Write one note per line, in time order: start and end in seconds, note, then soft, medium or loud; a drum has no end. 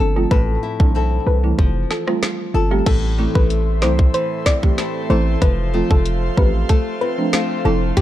0.00 0.26 G1 loud
0.00 0.31 F3 medium
0.00 0.95 C4 medium
0.00 0.38 D4 medium
0.00 0.32 A4 medium
0.16 0.28 F3 medium
0.16 0.28 A3 medium
0.16 0.28 C4 medium
0.16 0.28 F4 medium
0.16 0.26 A4 medium
0.31 0.58 A1 loud
0.31 1.65 A2 medium
0.31 0.96 A4 medium
0.31 0.42 B4 loud
0.31 kick loud
0.63 0.70 C4 medium
0.63 0.94 E4 medium
0.63 0.70 E4 medium
0.80 1.19 B1 medium
0.80 0.92 E3 medium
0.80 0.92 A3 medium
0.80 0.92 C4 medium
0.80 0.92 D4 medium
0.80 0.89 A4 medium
0.80 kick medium
0.95 4.45 C4 medium
0.95 1.66 E4 medium
0.95 2.54 A4 medium
1.27 1.53 C2 medium
1.27 1.33 C4 medium
1.27 1.34 E4 medium
1.27 1.38 B4 medium
1.43 1.56 E3 medium
1.43 1.56 A3 medium
1.43 1.56 C4 medium
1.43 1.56 E4 medium
1.59 1.85 F1 loud
1.59 2.93 F3 medium
1.59 kick medium
1.90 1.97 C4 medium
1.90 1.98 F4 medium
1.90 2.01 A4 medium
1.90 snare medium
2.07 2.19 G3 medium
2.07 2.19 A3 medium
2.07 2.20 C4 medium
2.07 2.20 F4 medium
2.07 cross-stick medium
2.23 snare loud
2.54 2.81 G1 loud
2.54 2.61 C4 medium
2.54 2.61 F4 loud
2.54 6.04 A4 medium
2.71 2.83 G3 medium
2.71 2.83 A3 medium
2.71 2.83 C4 medium
2.71 2.83 G4 medium
2.86 3.27 A1 loud
2.86 5.42 A2 medium
2.86 7.93 A4 medium
2.86 2.97 A4 loud
2.86 7.93 C5 medium
2.86 5.39 E5 medium
2.86 7.93 C6 medium
2.86 kick loud
2.86 closed hi-hat medium
2.86 crash loud
3.18 3.32 E3 medium
3.18 3.32 A3 medium
3.18 4.78 A3 medium
3.18 3.32 C4 medium
3.18 3.32 E4 medium
3.35 3.84 A1 medium
3.35 3.45 B4 medium
3.35 kick loud
3.50 closed hi-hat medium
3.82 4.09 C2 medium
3.82 3.96 E3 medium
3.82 3.96 A3 medium
3.82 3.96 C4 medium
3.82 3.96 E4 medium
3.82 3.93 C5 medium
3.82 snare medium
3.99 kick loud
4.14 5.41 E3 medium
4.14 4.25 C5 medium
4.14 closed hi-hat medium
4.46 4.53 C4 medium
4.46 4.78 C4 medium
4.46 4.53 E4 medium
4.46 4.57 D5 medium
4.46 kick medium
4.46 snare loud
4.63 4.75 E3 medium
4.63 4.75 A3 medium
4.63 4.75 C4 medium
4.63 4.75 G4 medium
4.63 kick medium
4.78 5.10 A3 medium
4.78 7.01 C4 medium
4.78 5.49 E4 medium
4.78 snare medium
4.78 closed hi-hat medium
5.10 5.37 A1 loud
5.10 5.23 E3 medium
5.10 5.23 A3 medium
5.10 5.73 A3 medium
5.10 5.23 C4 medium
5.10 5.24 E4 medium
5.10 5.20 C5 medium
5.42 5.83 F1 loud
5.42 7.96 F3 medium
5.42 5.52 B4 loud
5.42 7.94 F5 medium
5.42 kick loud
5.42 closed hi-hat medium
5.74 5.87 F3 medium
5.74 6.68 A3 medium
5.74 5.87 A3 medium
5.74 5.87 C4 medium
5.74 5.87 F4 medium
5.91 6.30 F1 loud
5.91 6.00 A4 medium
5.91 kick loud
6.06 closed hi-hat medium
6.37 6.64 A1 medium
6.37 6.51 F3 medium
6.37 6.51 A3 medium
6.37 6.51 C4 medium
6.37 6.51 G4 medium
6.37 6.48 B4 medium
6.37 kick medium
6.69 7.32 A3 medium
6.69 6.80 A4 medium
6.69 kick loud
6.69 closed hi-hat medium
7.01 7.08 C4 medium
7.01 7.33 C4 medium
7.01 7.08 F4 medium
7.01 7.12 B4 medium
7.18 7.30 F3 medium
7.18 7.30 A3 medium
7.18 7.30 C4 medium
7.18 7.30 D4 medium
7.33 7.64 A3 medium
7.33 8.02 C4 medium
7.33 8.02 F4 medium
7.33 snare loud
7.33 closed hi-hat medium
7.65 7.92 F1 medium
7.65 7.79 F3 medium
7.65 8.02 A3 medium
7.65 7.79 A3 medium
7.65 7.79 C4 medium
7.65 7.79 E4 medium
7.65 7.76 A4 medium
7.97 8.02 E1 loud
7.97 8.02 E3 medium
7.97 8.02 G4 loud
7.97 8.02 G4 medium
7.97 8.02 B4 medium
7.97 8.02 E5 medium
7.97 8.02 B5 medium
7.97 kick loud
7.97 closed hi-hat medium